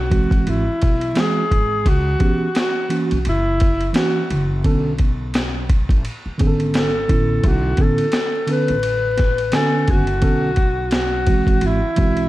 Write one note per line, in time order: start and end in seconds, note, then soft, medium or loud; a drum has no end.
0.00 0.28 B1 loud
0.00 0.51 F#4 medium
0.10 0.62 E3 medium
0.10 0.63 G#3 medium
0.10 0.63 C4 medium
0.10 0.63 F#4 medium
0.10 kick medium
0.10 ride medium
0.31 0.44 A1 medium
0.31 kick medium
0.31 ride soft
0.47 0.65 G#1 medium
0.47 1.22 E4 medium
0.47 ride medium
0.68 muted upright bass stroke soft
0.82 1.13 B1 medium
0.82 kick medium
0.82 ride medium
1.01 ride soft
1.15 1.42 E3 medium
1.15 1.42 G#3 medium
1.15 1.42 C4 medium
1.15 1.43 F#4 medium
1.15 snare loud
1.15 hi-hat pedal medium
1.15 ride medium
1.20 1.90 G#4 loud
1.51 1.83 G#1 medium
1.51 kick medium
1.51 ride medium
1.86 2.17 C#2 loud
1.86 2.57 F#4 medium
1.86 kick medium
1.86 ride medium
2.19 2.46 E3 medium
2.19 2.47 B3 medium
2.19 2.47 C#4 medium
2.19 2.47 G4 medium
2.19 kick medium
2.19 ride soft
2.55 snare loud
2.55 hi-hat pedal soft
2.55 ride medium
2.60 2.99 F#4 medium
2.89 3.16 E3 medium
2.89 3.17 A#3 medium
2.89 3.17 C#4 medium
2.89 3.17 F#4 medium
2.89 ride medium
3.11 3.24 B1 medium
3.11 ride soft
3.25 3.88 F#1 medium
3.25 ride medium
3.29 3.93 E4 medium
3.60 kick medium
3.60 ride medium
3.81 ride soft
3.93 4.20 E3 medium
3.93 4.21 A#3 medium
3.93 4.21 C#4 medium
3.93 4.22 F#4 medium
3.93 snare loud
3.93 hi-hat pedal medium
3.93 ride medium
3.99 4.49 F#4 medium
4.30 4.61 F#1 medium
4.30 ride medium
4.64 5.86 B1 loud
4.64 4.91 D3 medium
4.64 4.91 B3 medium
4.64 4.91 C#4 medium
4.64 4.92 A4 medium
4.64 kick medium
4.64 ride medium
4.99 kick medium
4.99 ride medium
5.34 snare medium
5.34 hi-hat pedal soft
5.34 ride medium
5.69 kick medium
5.69 ride medium
5.89 6.03 A1 medium
5.89 kick medium
5.89 ride soft
6.05 ride medium
6.26 muted upright bass stroke soft
6.38 7.03 G#1 medium
6.38 6.90 D3 medium
6.38 6.91 B3 medium
6.38 6.91 C#4 medium
6.38 6.48 G#4 medium
6.38 kick medium
6.38 ride medium
6.47 6.95 A4 medium
6.60 ride soft
6.74 snare loud
6.74 hi-hat pedal medium
6.74 ride medium
6.79 7.49 A4 medium
7.08 7.41 A1 medium
7.08 7.77 D3 soft
7.08 7.77 B3 soft
7.08 7.78 C#4 soft
7.08 8.09 E4 medium
7.08 kick medium
7.08 ride medium
7.44 7.75 B1 loud
7.44 kick loud
7.44 ride medium
7.48 7.84 F#4 medium
7.77 7.97 A1 medium
7.77 8.05 D3 medium
7.77 8.05 B3 medium
7.77 8.06 C#4 medium
7.77 8.06 A4 medium
7.77 kick medium
7.77 ride soft
7.82 8.53 A4 medium
7.98 ride soft
8.12 snare medium
8.12 hi-hat pedal soft
8.12 ride medium
8.47 8.74 D3 medium
8.47 8.75 B3 medium
8.47 8.75 C#4 medium
8.47 8.75 A4 medium
8.47 ride medium
8.51 9.55 B4 loud
8.68 9.50 A1 medium
8.68 ride soft
8.83 ride medium
9.17 kick medium
9.17 snare soft
9.17 ride medium
9.38 ride soft
9.52 10.04 D3 medium
9.52 10.05 B3 medium
9.52 10.05 C#4 medium
9.52 10.05 G#5 medium
9.52 snare loud
9.52 hi-hat pedal medium
9.52 ride medium
9.56 9.92 A4 medium
9.88 10.19 F#1 medium
9.88 10.94 F#4 loud
9.88 kick medium
9.88 ride medium
10.07 ride soft
10.21 11.44 B1 medium
10.21 10.49 D3 medium
10.21 10.49 B3 medium
10.21 10.49 C#4 medium
10.21 10.50 A4 medium
10.21 kick medium
10.21 ride medium
10.56 kick medium
10.56 ride soft
10.91 snare loud
10.91 hi-hat pedal soft
10.91 ride medium
10.96 11.67 F#4 medium
11.26 11.78 E3 medium
11.26 11.79 G#3 medium
11.26 11.79 C4 medium
11.26 11.79 F#4 medium
11.26 kick medium
11.26 ride medium
11.47 11.60 A1 medium
11.47 kick medium
11.47 ride soft
11.61 11.81 G#1 medium
11.61 ride medium
11.66 12.29 E4 medium
11.83 muted upright bass stroke soft
11.96 12.29 B1 medium
11.96 12.29 E3 medium
11.96 12.29 G#3 medium
11.96 12.29 C4 medium
11.96 12.29 F#4 medium
11.96 kick medium
11.96 ride medium
12.17 ride soft